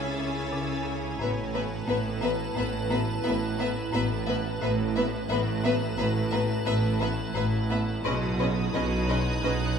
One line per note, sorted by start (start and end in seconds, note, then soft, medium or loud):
0.00 1.16 C#2 soft
0.00 1.17 C#3 soft
0.00 1.17 C#4 medium
0.00 1.17 E4 medium
0.00 1.16 G#4 soft
0.00 1.17 C#5 soft
0.00 1.16 E5 soft
0.00 1.17 G#5 medium
0.00 0.83 E6 soft
0.00 0.83 A6 soft
0.19 0.39 C#3 soft
0.52 0.73 C#3 medium
0.86 1.06 C#4 soft
1.19 1.80 A1 medium
1.19 1.40 A2 medium
1.19 1.81 A2 medium
1.19 1.29 B3 medium
1.19 4.57 E4 medium
1.19 4.60 B4 medium
1.19 1.29 B4 soft
1.19 1.28 E5 soft
1.19 4.60 A5 medium
1.53 1.74 A2 soft
1.53 1.62 B3 medium
1.53 1.62 B4 medium
1.53 1.63 E5 soft
1.87 2.49 A1 medium
1.87 2.08 A2 medium
1.87 2.48 A2 medium
1.87 1.96 B3 medium
1.87 1.98 B4 medium
1.87 1.96 E5 soft
2.21 2.42 A2 medium
2.21 2.30 B3 soft
2.21 2.32 B4 medium
2.21 2.30 E5 medium
2.55 3.17 A1 medium
2.55 2.76 A2 medium
2.55 3.17 A2 medium
2.55 2.65 B3 medium
2.55 2.66 B4 medium
2.55 2.65 E5 soft
2.90 3.11 A2 medium
2.90 2.98 B3 medium
2.90 3.01 B4 soft
2.90 2.99 E5 soft
3.24 3.85 A1 medium
3.24 3.45 A2 medium
3.24 3.85 A2 medium
3.24 3.33 B3 medium
3.24 3.35 B4 medium
3.24 3.33 E5 medium
3.59 3.79 A2 medium
3.59 3.67 B3 medium
3.59 3.69 B4 medium
3.59 3.67 E5 medium
3.93 4.54 A1 medium
3.93 4.13 A2 medium
3.93 4.53 A2 medium
3.93 4.02 B3 medium
3.93 4.03 B4 medium
3.93 4.02 E5 medium
4.27 4.48 A3 soft
4.27 4.36 B3 medium
4.27 4.37 B4 medium
4.27 4.35 E5 medium
4.61 5.22 A1 medium
4.61 5.22 A2 medium
4.61 4.82 A2 medium
4.61 4.70 B3 medium
4.61 8.01 E4 medium
4.61 8.01 B4 medium
4.61 4.70 B4 medium
4.61 4.69 E5 medium
4.61 8.01 A5 medium
4.96 5.16 A2 medium
4.96 5.05 B3 medium
4.96 5.04 B4 medium
4.96 5.04 E5 medium
5.30 5.90 A1 medium
5.30 5.50 A2 medium
5.30 5.90 A2 medium
5.30 5.38 B3 medium
5.30 5.40 B4 medium
5.30 5.38 E5 medium
5.64 5.84 A2 medium
5.64 5.72 B3 medium
5.64 5.74 B4 medium
5.64 5.72 E5 medium
5.97 6.58 A1 medium
5.97 6.19 A2 medium
5.97 6.59 A2 medium
5.97 6.06 B3 medium
5.97 6.07 B4 medium
5.97 6.05 E5 medium
6.31 6.53 A2 medium
6.31 6.40 B3 medium
6.31 6.41 B4 medium
6.31 6.39 E5 medium
6.65 7.27 A1 medium
6.65 6.87 A2 medium
6.65 7.28 A2 medium
6.65 6.73 B3 medium
6.65 6.74 B4 medium
6.65 6.74 E5 medium
7.00 7.21 A2 medium
7.00 7.09 B3 medium
7.00 7.08 B4 medium
7.00 7.09 E5 medium
7.35 7.97 A1 medium
7.35 7.56 A2 medium
7.35 7.97 A2 medium
7.35 7.44 B3 soft
7.35 7.43 B4 soft
7.35 7.43 E5 medium
7.69 7.91 A3 medium
7.69 7.78 B3 soft
7.69 7.77 B4 soft
7.69 7.78 E5 medium
8.04 8.66 B1 medium
8.04 8.26 B2 medium
8.04 8.66 B2 medium
8.04 8.13 C#4 medium
8.04 9.79 D#4 medium
8.04 8.12 B4 medium
8.04 9.79 C#5 medium
8.04 8.13 D#5 medium
8.04 9.79 B5 medium
8.04 9.79 D#6 medium
8.39 8.60 B2 medium
8.39 8.48 C#4 medium
8.39 8.48 B4 medium
8.39 8.47 D#5 soft
8.74 9.35 B1 medium
8.74 9.35 B2 medium
8.74 8.95 B2 soft
8.74 8.83 C#4 medium
8.74 8.82 B4 medium
8.74 8.82 D#5 medium
8.74 9.79 F#6 soft
9.09 9.30 B2 medium
9.09 9.17 C#4 soft
9.09 9.17 B4 medium
9.09 9.17 D#5 medium
9.43 9.79 B1 medium
9.43 9.64 B2 soft
9.43 9.79 B2 medium
9.43 9.51 C#4 medium
9.43 9.52 B4 medium
9.43 9.51 D#5 medium